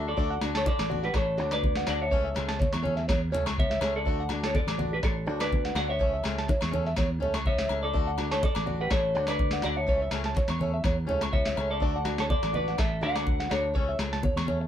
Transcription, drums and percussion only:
0.17 kick medium
0.17 muted conga soft
0.41 snare medium
0.41 muted conga soft
0.41 low agogo medium
0.55 snare medium
0.66 kick medium
0.66 snare soft
0.66 high conga loud
0.79 snare medium
0.79 low agogo medium
0.91 high conga medium
1.03 snare soft
1.14 kick loud
1.14 snare medium
1.14 muted conga soft
1.14 low agogo medium
1.38 snare soft
1.51 snare medium
1.51 low agogo medium
1.63 kick loud
1.63 high conga medium
1.76 snare medium
1.87 snare medium
1.87 muted conga soft
1.87 low agogo medium
2.12 kick loud
2.12 muted conga soft
2.36 snare medium
2.36 muted conga soft
2.36 low agogo medium
2.49 snare medium
2.59 kick medium
2.59 snare soft
2.59 high conga medium
2.73 snare medium
2.73 low agogo medium
2.85 high conga medium
2.97 snare soft
3.09 kick loud
3.09 snare medium
3.09 muted conga soft
3.09 low conga medium
3.09 low agogo medium
3.34 snare soft
3.34 low conga medium
3.46 snare medium
3.46 low agogo medium
3.58 kick loud
3.58 high conga medium
3.71 snare medium
3.81 snare medium
3.81 muted conga soft
3.81 low agogo medium
4.06 kick medium
4.06 muted conga soft
4.29 snare medium
4.29 muted conga soft
4.29 low agogo medium
4.44 snare medium
4.55 kick medium
4.55 snare soft
4.55 high conga medium
4.68 snare medium
4.68 low agogo medium
4.79 high conga medium
5.03 kick loud
5.03 snare medium
5.03 muted conga soft
5.03 low agogo medium
5.40 snare medium
5.40 low agogo medium
5.52 kick loud
5.52 high conga medium
5.65 snare medium
5.75 snare medium
5.75 muted conga soft
5.75 low agogo medium
6.00 kick medium
6.00 muted conga soft
6.24 snare medium
6.24 muted conga soft
6.24 low agogo medium
6.38 snare medium
6.48 kick loud
6.48 snare soft
6.48 high conga medium
6.61 snare medium
6.61 low agogo medium
6.74 high conga medium
6.86 snare soft
6.96 kick medium
6.96 snare medium
6.96 muted conga soft
6.96 low conga medium
6.96 low agogo medium
7.23 low conga medium
7.34 snare medium
7.34 low agogo medium
7.46 kick medium
7.46 high conga medium
7.58 snare medium
7.69 muted conga soft
7.69 low agogo medium
7.95 kick medium
7.95 muted conga soft
8.18 snare medium
8.18 muted conga soft
8.18 low agogo medium
8.32 snare medium
8.43 kick loud
8.43 snare soft
8.43 high conga medium
8.55 snare medium
8.55 low agogo medium
8.67 high conga medium
8.90 kick loud
8.90 snare medium
8.90 muted conga soft
8.90 low agogo medium
9.15 snare soft
9.27 snare medium
9.27 low agogo medium
9.39 kick loud
9.39 high conga medium
9.51 snare medium
9.62 snare medium
9.62 muted conga soft
9.62 low agogo medium
9.87 kick medium
9.87 muted conga soft
10.11 snare medium
10.11 muted conga soft
10.11 low agogo medium
10.24 snare medium
10.35 kick loud
10.35 snare soft
10.35 high conga medium
10.48 snare medium
10.48 low agogo medium
10.61 high conga medium
10.84 kick medium
10.84 snare medium
10.84 muted conga soft
10.84 low conga medium
10.84 low agogo medium
11.09 low conga medium
11.21 snare medium
11.21 low agogo medium
11.33 kick loud
11.33 high conga medium
11.45 snare medium
11.57 muted conga soft
11.57 low agogo medium
11.81 kick medium
11.81 muted conga soft
12.05 snare medium
12.05 muted conga soft
12.05 low agogo medium
12.18 snare medium
12.30 kick loud
12.30 high conga medium
12.43 snare medium
12.43 low agogo medium
12.54 high conga medium
12.68 snare soft
12.78 kick loud
12.78 snare medium
12.78 muted conga soft
12.78 low agogo medium
13.03 snare soft
13.16 snare medium
13.16 low agogo medium
13.27 kick loud
13.27 high conga medium
13.40 snare medium
13.51 snare medium
13.51 muted conga soft
13.51 low agogo medium
13.75 kick medium
13.75 muted conga soft
13.99 snare medium
13.99 muted conga soft
13.99 low agogo medium
14.13 snare medium
14.23 kick medium
14.23 high conga loud
14.37 snare medium
14.37 low agogo medium
14.48 high conga medium

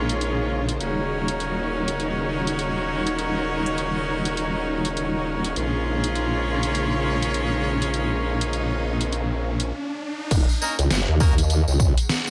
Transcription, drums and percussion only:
0.09 closed hi-hat medium
0.21 closed hi-hat soft
0.69 closed hi-hat medium
0.81 closed hi-hat soft
1.28 closed hi-hat medium
1.40 closed hi-hat soft
1.88 closed hi-hat medium
2.00 closed hi-hat soft
2.47 closed hi-hat medium
2.59 closed hi-hat soft
3.07 closed hi-hat medium
3.19 closed hi-hat soft
3.66 closed hi-hat medium
3.78 closed hi-hat soft
4.25 closed hi-hat medium
4.37 closed hi-hat soft
4.85 closed hi-hat medium
4.97 closed hi-hat soft
5.44 closed hi-hat medium
5.56 closed hi-hat soft
6.04 closed hi-hat medium
6.16 closed hi-hat soft
6.63 closed hi-hat medium
6.75 closed hi-hat soft
7.22 closed hi-hat medium
7.34 closed hi-hat soft
7.82 closed hi-hat medium
7.94 closed hi-hat medium
8.41 closed hi-hat medium
8.53 closed hi-hat soft
9.01 closed hi-hat medium
9.12 closed hi-hat soft
9.60 closed hi-hat medium
10.31 kick loud
10.31 closed hi-hat medium
10.31 crash loud
10.31 tambourine medium
10.49 tambourine soft
10.62 tambourine medium
10.79 closed hi-hat medium
10.79 tambourine soft
10.90 snare loud
10.90 closed hi-hat medium
10.90 tambourine medium
11.20 kick loud
11.20 tambourine medium
11.38 closed hi-hat medium
11.38 tambourine soft
11.50 closed hi-hat medium
11.50 tambourine medium
11.68 tambourine soft
11.80 kick loud
11.80 tambourine medium
11.98 closed hi-hat medium
11.98 tambourine soft
12.09 snare loud
12.09 closed hi-hat medium
12.09 tambourine medium

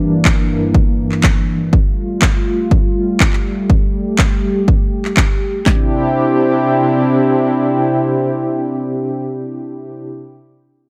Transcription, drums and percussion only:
0.25 kick loud
0.25 clap loud
0.74 kick loud
1.12 clap soft
1.24 kick loud
1.24 clap loud
1.73 kick loud
2.22 kick loud
2.22 clap loud
2.71 kick loud
3.20 kick loud
3.20 clap loud
3.33 clap soft
3.70 kick loud
4.19 kick loud
4.19 clap loud
4.68 kick loud
5.05 clap soft
5.17 kick loud
5.17 clap loud
5.66 kick medium
5.66 snare medium
5.66 clap medium

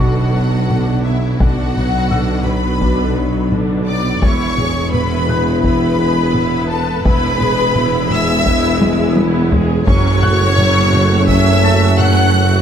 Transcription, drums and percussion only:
0.70 taiko mid medium
1.40 taiko medium
1.76 taiko mid soft
2.11 taiko mid medium
2.46 taiko mid soft
2.82 taiko medium
3.52 taiko mid medium
4.22 taiko loud
4.58 taiko mid soft
4.94 taiko mid medium
5.29 taiko mid soft
5.64 taiko medium
6.34 taiko mid medium
7.05 taiko loud
7.41 taiko mid medium
7.76 taiko mid medium
8.11 taiko mid medium
8.46 taiko medium
8.82 taiko high medium
9.17 taiko high medium
9.52 taiko low loud
9.87 taiko loud
10.23 taiko mid medium
10.58 taiko mid medium
10.94 taiko mid soft
11.28 taiko medium
11.99 taiko mid medium

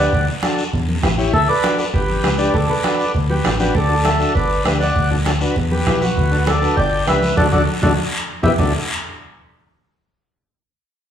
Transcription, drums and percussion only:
0.12 bombo low medium
0.12 high conga soft
0.12 long guiro medium
0.28 high conga soft
0.28 low conga medium
0.43 bombo rim medium
0.43 high conga medium
0.43 short guiro medium
0.58 short guiro medium
0.73 bombo low medium
0.73 long guiro medium
0.88 high conga medium
1.03 bombo low medium
1.03 bombo rim medium
1.03 high conga medium
1.03 low conga medium
1.03 short guiro medium
1.19 short guiro medium
1.33 bombo low medium
1.33 high conga soft
1.33 long guiro medium
1.49 high conga soft
1.64 bombo rim medium
1.64 high conga loud
1.64 short guiro medium
1.78 short guiro medium
1.94 bombo low medium
1.94 long guiro medium
2.09 high conga medium
2.24 bombo rim medium
2.24 high conga medium
2.24 short guiro medium
2.38 short guiro medium
2.54 bombo low medium
2.54 high conga soft
2.54 long guiro medium
2.69 high conga soft
2.69 low conga medium
2.84 bombo rim medium
2.84 high conga medium
2.84 short guiro medium
2.99 short guiro medium
3.14 bombo low medium
3.14 long guiro medium
3.29 high conga medium
3.44 bombo rim medium
3.44 high conga medium
3.44 low conga medium
3.44 short guiro medium
3.60 high conga medium
3.60 short guiro medium
3.75 bombo low medium
3.75 high conga soft
3.75 long guiro medium
4.05 bombo rim medium
4.05 high conga medium
4.05 short guiro medium
4.20 short guiro medium
4.35 bombo low medium
4.35 long guiro medium
4.65 bombo rim medium
4.65 high conga medium
4.65 short guiro medium
4.81 short guiro medium
4.96 bombo low medium
4.96 high conga soft
4.96 long guiro medium
5.11 high conga soft
5.11 low conga medium
5.26 bombo rim medium
5.26 high conga medium
5.26 short guiro medium
5.41 short guiro medium
5.56 bombo low medium
5.56 long guiro medium
5.71 high conga medium
5.86 bombo low medium
5.86 bombo rim medium
5.86 high conga medium
5.86 low conga medium
5.86 short guiro medium
6.02 high conga medium
6.02 short guiro medium
6.17 bombo low medium
6.17 high conga soft
6.17 long guiro medium
6.32 high conga soft
6.47 bombo rim medium
6.47 high conga medium
6.47 short guiro medium
6.62 short guiro medium
6.77 bombo low medium
6.77 long guiro medium
7.07 bombo rim medium
7.07 high conga medium
7.07 short guiro medium
7.23 high conga medium
7.23 short guiro medium
7.37 bombo low loud
7.37 high conga loud
7.37 long guiro loud
7.52 bombo low loud
7.52 high conga loud
7.52 long guiro loud
7.83 bombo low loud
7.83 high conga loud
7.83 long guiro loud
8.44 bombo low loud
8.44 high conga loud
8.44 long guiro loud
8.59 bombo low loud
8.59 low conga loud
8.59 long guiro loud

